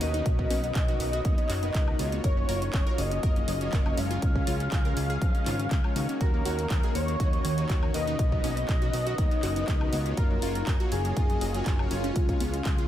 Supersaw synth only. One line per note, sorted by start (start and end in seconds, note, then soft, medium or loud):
0.01 0.48 B2 medium
0.01 0.48 D#4 medium
0.01 0.48 F#4 medium
0.01 0.48 A#4 medium
0.01 0.48 B4 loud
0.51 0.62 B2 loud
0.51 0.62 A#3 medium
0.51 0.62 D#4 medium
0.51 0.62 F#4 medium
0.51 0.62 B4 loud
0.88 1.22 B2 medium
0.88 1.22 D#4 medium
0.88 1.22 F#4 medium
0.88 1.22 A#4 medium
0.88 1.22 B4 medium
1.25 1.60 B2 medium
1.25 1.60 A#3 medium
1.25 1.60 D#4 medium
1.25 1.60 F#4 medium
1.25 1.60 C#5 medium
1.63 1.96 B2 medium
1.63 1.97 D#4 medium
1.63 1.97 F#4 medium
1.63 1.96 A#4 medium
1.63 1.96 B4 loud
1.99 2.46 A#3 medium
1.99 2.46 F4 medium
1.99 2.46 F#4 medium
1.99 2.46 C#5 loud
2.49 2.61 A#3 loud
2.49 2.61 F4 medium
2.49 2.61 F#4 medium
2.49 2.61 C#5 loud
2.87 3.20 A#3 medium
2.87 3.20 F4 medium
2.87 3.20 F#4 medium
2.87 3.20 C#5 medium
3.23 3.58 A#3 medium
3.23 3.58 F4 medium
3.23 3.58 F#4 medium
3.23 3.58 D#5 medium
3.61 3.95 A#3 loud
3.61 3.95 F4 medium
3.61 3.95 F#4 medium
3.61 3.95 C#5 loud
3.98 4.44 C#3 medium
3.98 4.44 G#3 medium
3.98 4.44 C#4 medium
3.98 4.44 F4 medium
3.98 4.44 C#5 loud
4.47 4.59 C#3 loud
4.47 4.59 G#3 medium
4.47 4.59 C#4 medium
4.47 4.59 F4 medium
4.47 4.59 C#5 loud
4.85 5.19 C#3 medium
4.85 5.19 G#3 medium
4.85 5.19 C#4 medium
4.85 5.19 F4 medium
4.85 5.19 C#5 medium
5.22 5.44 C#3 medium
5.22 5.44 G#3 medium
5.22 5.44 C#4 medium
5.22 5.44 F4 medium
5.22 5.44 D#5 medium
5.46 5.58 C#3 loud
5.46 5.58 G#3 medium
5.46 5.58 C#4 medium
5.46 5.58 F4 medium
5.46 5.58 C#5 loud
5.84 5.91 C#3 medium
5.84 5.91 G#3 medium
5.84 5.91 C#4 medium
5.84 5.91 F4 medium
5.84 5.91 C#5 loud
5.96 6.43 D#3 medium
5.96 6.43 A#3 medium
5.96 6.43 D#4 medium
5.96 6.43 F#4 medium
5.96 6.43 C#5 loud
6.46 6.57 D#3 loud
6.46 6.57 A#3 medium
6.46 6.57 D#4 medium
6.46 6.57 F#4 medium
6.46 6.57 C#5 loud
6.83 7.17 D#3 medium
6.83 7.17 A#3 medium
6.83 7.17 D#4 medium
6.83 7.17 F#4 medium
6.83 7.17 C#5 medium
7.20 7.55 D#3 medium
7.20 7.55 A#3 medium
7.20 7.55 D#4 medium
7.20 7.55 F#4 medium
7.20 7.55 D#5 medium
7.58 7.92 D#3 loud
7.58 7.92 A#3 medium
7.58 7.92 D#4 medium
7.58 7.92 F#4 medium
7.58 7.92 C#5 loud
7.94 8.41 B2 medium
7.94 8.41 D#4 medium
7.94 8.41 F#4 medium
7.94 8.41 A#4 medium
7.94 8.41 B4 loud
8.44 8.56 B2 loud
8.44 8.56 A#3 medium
8.44 8.56 D#4 medium
8.44 8.56 F#4 medium
8.44 8.56 B4 loud
8.82 9.15 B2 medium
8.82 9.15 D#4 medium
8.82 9.15 F#4 medium
8.82 9.15 A#4 medium
8.82 9.15 B4 medium
9.18 9.53 B2 medium
9.18 9.53 A#3 medium
9.18 9.53 D#4 medium
9.18 9.53 F#4 medium
9.18 9.53 C#5 medium
9.56 9.90 B2 medium
9.56 9.90 D#4 medium
9.56 9.90 F#4 medium
9.56 9.90 A#4 medium
9.56 9.90 B4 loud
9.93 10.39 A#3 medium
9.93 10.39 F4 medium
9.93 10.39 F#4 medium
9.93 10.39 C#5 loud
10.42 10.54 A#3 loud
10.42 10.54 F4 medium
10.42 10.54 F#4 medium
10.42 10.54 C#5 loud
10.80 11.14 A#3 medium
10.80 11.14 F4 medium
10.80 11.14 F#4 medium
10.80 11.14 C#5 medium
11.17 11.51 A#3 medium
11.17 11.51 F4 medium
11.17 11.51 F#4 medium
11.17 11.51 D#5 loud
11.54 11.88 A#3 medium
11.54 11.88 F4 medium
11.54 11.88 F#4 medium
11.54 11.88 C#5 loud
11.91 12.38 C#3 medium
11.91 12.38 G#3 medium
11.91 12.38 C#4 medium
11.91 12.38 F4 medium
11.91 12.38 C#5 loud
12.41 12.52 C#3 loud
12.41 12.52 G#3 medium
12.41 12.52 C#4 loud
12.41 12.52 F4 medium
12.41 12.52 C#5 loud
12.79 12.88 C#3 medium
12.79 12.88 G#3 medium
12.79 12.88 C#4 medium
12.79 12.88 F4 medium
12.79 12.88 C#5 medium